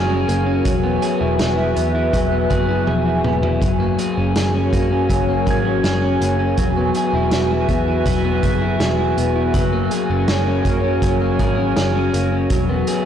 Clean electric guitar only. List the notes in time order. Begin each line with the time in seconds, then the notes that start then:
Already playing: F#3 A#3 G#4
0.10 C#4
0.28 A#3
0.46 C#4
0.65 F#3
0.84 B3
1.02 G#4
1.20 E4
1.39 G#4
1.58 E4
1.76 B3
1.95 E4
2.13 F#3
2.32 B3
2.50 G#4
2.69 E4
2.87 G#4
3.06 E4
3.24 B3
3.43 E4
3.61 F#3
3.80 A#3
3.99 G#4
4.17 C#4
4.36 G#4
4.54 C#4
4.73 A#3
4.91 C#4
5.10 F#3
5.28 A#3
5.46 G#4
5.65 C#4
5.84 G#4
6.02 C#4
6.21 A#3
6.39 C#4
6.58 F#3
6.77 B3
6.95 G#4
7.14 E4
7.32 G#4
7.51 E4
7.69 B3
7.88 E4
8.06 F#3
8.25 B3
8.43 G#4
8.62 E4
8.80 G#4
8.99 E4
9.17 B3
9.36 E4
9.54 F#3
9.73 A#3
9.91 G#4
10.10 C#4
10.29 G#4
10.47 C#4
10.66 A#3
10.84 C#4
11.03 F#3
11.21 A#3
11.40 G#4
11.58 C#4
11.77 G#4
11.95 C#4
12.13 A#3
12.32 C#4
12.50 F#3
12.69 B3
12.88 G#4